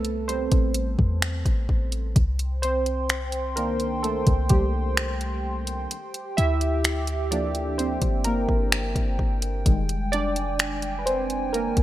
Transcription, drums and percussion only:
0.05 closed hi-hat
0.29 closed hi-hat
0.52 kick, closed hi-hat
0.74 closed hi-hat
0.99 kick
1.22 finger snap, closed hi-hat
1.46 kick, closed hi-hat
1.69 kick
1.92 closed hi-hat
2.16 kick, closed hi-hat
2.39 closed hi-hat
2.63 closed hi-hat
2.86 closed hi-hat
3.09 finger snap, closed hi-hat
3.32 closed hi-hat
3.57 closed hi-hat
3.80 closed hi-hat
4.04 closed hi-hat
4.27 kick, closed hi-hat
4.49 kick, closed hi-hat
4.97 finger snap, closed hi-hat
5.21 closed hi-hat
5.67 closed hi-hat
5.91 closed hi-hat
6.14 closed hi-hat
6.38 closed hi-hat
6.61 closed hi-hat
6.84 finger snap, closed hi-hat
7.07 closed hi-hat
7.32 closed hi-hat
7.55 closed hi-hat
7.79 closed hi-hat
8.02 kick, closed hi-hat
8.24 closed hi-hat
8.49 kick
8.72 finger snap, closed hi-hat
8.96 kick, closed hi-hat
9.19 kick
9.42 closed hi-hat
9.66 kick, closed hi-hat
9.89 closed hi-hat
10.13 closed hi-hat
10.36 closed hi-hat
10.59 finger snap, closed hi-hat
10.82 closed hi-hat
11.07 closed hi-hat
11.30 closed hi-hat
11.54 closed hi-hat
11.77 kick, closed hi-hat

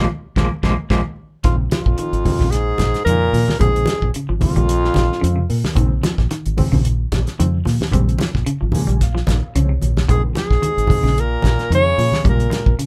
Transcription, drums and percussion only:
0.36 kick, snare, high conga
0.63 kick, snare, high conga
0.90 kick, snare, high conga
1.44 kick, snare, closed hi-hat, low conga
1.71 snare, closed hi-hat, high conga
1.86 kick
1.98 closed hi-hat
2.13 closed hi-hat
2.25 kick, open hi-hat, high conga, low conga
2.39 snare, high conga, low conga
2.52 snare, closed hi-hat
2.78 kick, snare, closed hi-hat, high conga
2.94 snare, closed hi-hat
3.07 closed hi-hat
3.33 open hi-hat, high conga
3.48 snare, high conga
3.60 kick, closed hi-hat, low conga
3.76 closed hi-hat
3.86 snare, closed hi-hat, high conga
4.02 kick
4.14 closed hi-hat
4.41 kick, open hi-hat, high conga, low conga
4.55 closed hi-hat, high conga
4.69 closed hi-hat
4.85 snare
4.94 kick, snare, closed hi-hat, high conga
5.12 snare
5.24 closed hi-hat
5.50 open hi-hat
5.64 snare, high conga
5.75 kick, closed hi-hat, low conga
6.03 snare, closed hi-hat, high conga
6.18 kick, snare
6.31 snare, closed hi-hat
6.46 closed hi-hat
6.58 kick, open hi-hat, high conga, low conga
6.74 high conga, low conga
6.85 closed hi-hat
7.12 kick, snare, closed hi-hat, high conga
7.27 snare, closed hi-hat
7.40 closed hi-hat
7.65 snare, open hi-hat, high conga
7.81 snare, high conga
7.91 kick, closed hi-hat, low conga
8.09 closed hi-hat
8.19 snare, closed hi-hat, high conga
8.35 kick, snare
8.46 closed hi-hat
8.72 open hi-hat, high conga, low conga
8.89 closed hi-hat
9.01 kick, snare, closed hi-hat
9.17 snare
9.27 kick, snare, closed hi-hat, high conga
9.56 closed hi-hat
9.82 closed hi-hat, high conga
9.97 snare, high conga
10.09 kick, closed hi-hat, low conga
10.35 snare, closed hi-hat, high conga
10.51 kick, snare
10.62 closed hi-hat, high conga
10.78 closed hi-hat
10.87 kick, open hi-hat, high conga, low conga
11.07 snare
11.18 closed hi-hat
11.42 kick, snare, closed hi-hat, high conga
11.59 snare, closed hi-hat
11.72 closed hi-hat
11.99 open hi-hat
12.12 snare, high conga
12.25 kick, closed hi-hat, low conga
12.40 closed hi-hat
12.51 snare, closed hi-hat, high conga
12.66 kick
12.79 closed hi-hat

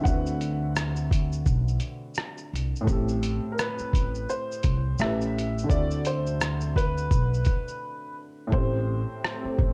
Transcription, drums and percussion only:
0.05 kick, shaker
0.26 shaker
0.41 closed hi-hat, shaker
0.76 cross-stick, shaker
0.96 shaker
1.11 kick, closed hi-hat, shaker
1.32 shaker
1.46 kick, shaker
1.68 shaker
1.80 closed hi-hat, shaker
2.15 cross-stick, shaker
2.38 shaker
2.56 closed hi-hat, shaker
2.76 shaker
2.87 kick, shaker
3.08 shaker
3.23 closed hi-hat, shaker
3.58 cross-stick, shaker
3.78 shaker
3.93 kick, closed hi-hat, shaker
4.15 shaker
4.29 shaker
4.52 shaker
4.63 kick, closed hi-hat, shaker
4.98 cross-stick, shaker
5.21 shaker
5.39 closed hi-hat, shaker
5.58 shaker
5.70 kick, shaker
5.91 shaker
6.05 closed hi-hat, shaker
6.26 shaker
6.41 cross-stick, shaker
6.61 shaker
6.76 kick, closed hi-hat, shaker
6.97 shaker
7.11 kick, shaker
7.34 shaker
7.45 kick, closed hi-hat, shaker
7.68 shaker
8.52 kick
9.24 cross-stick
9.59 kick

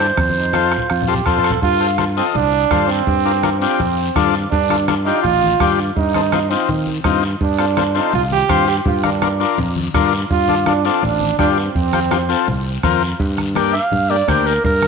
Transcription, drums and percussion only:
0.00 short guiro
0.17 bombo low, bombo rim, high conga, long guiro
0.29 high conga
0.53 bombo rim, high conga, short guiro
0.72 bombo rim, short guiro
0.78 low conga
0.90 bombo rim, long guiro
1.02 low conga
1.14 low conga
1.26 bombo low, bombo rim, short guiro
1.38 low conga
1.44 bombo rim, short guiro
1.50 low conga
1.62 bombo low, long guiro
1.98 bombo rim, high conga, short guiro
2.17 short guiro
2.35 high conga, low conga, long guiro
2.71 bombo low, bombo rim, high conga, short guiro
2.89 short guiro
3.07 bombo low, long guiro
3.43 bombo rim, high conga, short guiro
3.62 short guiro
3.80 high conga, low conga, long guiro
4.16 bombo low, bombo rim, high conga, short guiro
4.34 short guiro
4.52 bombo low, long guiro
4.70 bombo rim, high conga
4.88 bombo rim, high conga, short guiro
5.06 short guiro
5.24 high conga, low conga, long guiro
5.42 high conga
5.60 bombo low, bombo rim, high conga, short guiro
5.79 short guiro
5.97 bombo low, long guiro
6.14 bombo rim, high conga
6.32 bombo rim, high conga, short guiro
6.51 short guiro
6.69 high conga, low conga, long guiro
6.87 high conga
7.04 bombo low, bombo rim, high conga, short guiro
7.23 short guiro
7.41 bombo low, high conga, long guiro
7.59 bombo rim
7.77 bombo rim, high conga, short guiro
7.95 short guiro
8.13 high conga, low conga, long guiro
8.31 high conga
8.49 bombo low, bombo rim, high conga, short guiro
8.68 short guiro
8.85 bombo low, high conga, low conga, long guiro
9.04 bombo rim, high conga
9.22 bombo rim, high conga, short guiro
9.41 short guiro
9.58 high conga, low conga, long guiro
9.76 high conga
9.94 bombo low, bombo rim, high conga, low conga, short guiro
10.13 short guiro
10.30 bombo low, high conga, long guiro
10.48 high conga
10.66 bombo rim, high conga, short guiro
10.85 short guiro
11.03 high conga, low conga, long guiro
11.20 high conga
11.38 bombo low, bombo rim, high conga, short guiro
11.57 short guiro
11.75 bombo low, high conga, long guiro
11.93 bombo rim, high conga
12.11 bombo rim, high conga, short guiro
12.30 short guiro
12.48 high conga, low conga, long guiro
12.83 bombo low, bombo rim, high conga, short guiro
13.02 short guiro
13.20 bombo low, high conga, long guiro
13.38 bombo rim, high conga
13.55 bombo rim, high conga, short guiro
13.75 short guiro
13.92 high conga, low conga, long guiro
14.28 bombo low, bombo rim, high conga, short guiro
14.47 short guiro
14.64 bombo low, high conga, low conga, long guiro
14.82 bombo rim, high conga

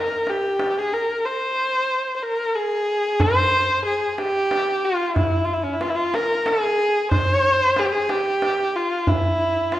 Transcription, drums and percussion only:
0.27 tombak tek
0.59 tombak tek
0.92 tombak ka
3.20 tombak dum
3.53 tombak ka
4.18 tombak tek
4.51 tombak tek
5.16 tombak dum
5.49 tombak ka
5.81 tombak tek
6.14 tombak tek
6.46 tombak tek
7.12 tombak dum
7.44 tombak ka
7.76 tombak tek
8.09 tombak tek
8.42 tombak tek
9.07 tombak dum
9.40 tombak ka
9.72 tombak tek

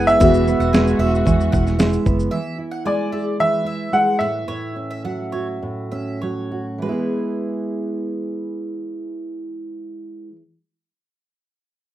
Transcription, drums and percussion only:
0.09 shaker
0.21 kick, shaker
0.34 shaker
0.48 shaker
0.61 shaker
0.74 snare, shaker
0.87 shaker
1.15 shaker
1.27 kick, shaker
1.41 shaker
1.53 kick, shaker
1.67 snare, shaker
1.79 snare, shaker
1.93 shaker
2.06 kick, shaker
2.19 shaker

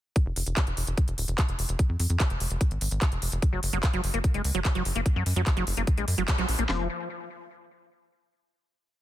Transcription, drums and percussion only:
0.16 kick, closed hi-hat
0.36 open hi-hat
0.46 closed hi-hat
0.57 kick, clap, closed hi-hat
0.67 closed hi-hat
0.77 open hi-hat
0.87 closed hi-hat
0.98 kick, closed hi-hat
1.08 closed hi-hat
1.18 open hi-hat
1.28 closed hi-hat
1.38 kick, clap, closed hi-hat
1.49 closed hi-hat
1.59 open hi-hat
1.69 closed hi-hat
1.79 kick, closed hi-hat
2.00 open hi-hat
2.10 closed hi-hat
2.20 kick, clap, closed hi-hat
2.30 closed hi-hat
2.40 open hi-hat
2.51 closed hi-hat
2.61 kick, closed hi-hat
2.71 closed hi-hat
2.81 open hi-hat
2.91 closed hi-hat
3.02 kick, clap, closed hi-hat
3.12 closed hi-hat
3.22 open hi-hat
3.32 closed hi-hat
3.42 kick, closed hi-hat
3.63 open hi-hat
3.73 closed hi-hat
3.83 kick, clap, closed hi-hat
3.93 closed hi-hat
4.04 open hi-hat
4.14 closed hi-hat
4.24 kick, closed hi-hat
4.34 closed hi-hat
4.44 open hi-hat
4.55 closed hi-hat
4.65 kick, clap, closed hi-hat
4.75 closed hi-hat
4.85 open hi-hat
4.95 closed hi-hat
5.06 kick, closed hi-hat
5.26 open hi-hat
5.36 closed hi-hat
5.46 kick, clap, closed hi-hat
5.57 closed hi-hat
5.67 open hi-hat
5.77 closed hi-hat
5.87 kick, closed hi-hat
5.97 closed hi-hat
6.08 open hi-hat
6.18 closed hi-hat
6.28 kick, clap, closed hi-hat
6.38 closed hi-hat
6.49 open hi-hat
6.59 closed hi-hat
6.69 snare, clap

